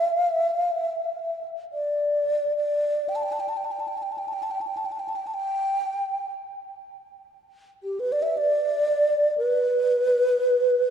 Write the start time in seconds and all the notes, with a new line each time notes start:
Already playing: E5
0.10 F5
0.30 E5
0.52 F5
0.72 E5
1.73 D5
2.57 D5
3.09 G5
3.16 A5
3.23 G5
3.32 A5
3.40 G5
3.49 A5
3.57 G5
3.65 A5
3.72 G5
3.80 A5
3.88 G5
3.98 A5
4.03 G5
4.12 A5
4.18 G5
4.28 A5
4.33 G5
4.43 A5
4.51 G5
4.61 A5
4.67 G5
4.77 A5
4.85 G5
4.92 A5
4.99 G5
5.09 A5
5.16 G5
5.27 A5
5.34 G5
7.83 G4
8.00 B4
8.12 D5
8.22 E5
8.38 D5
9.38 B4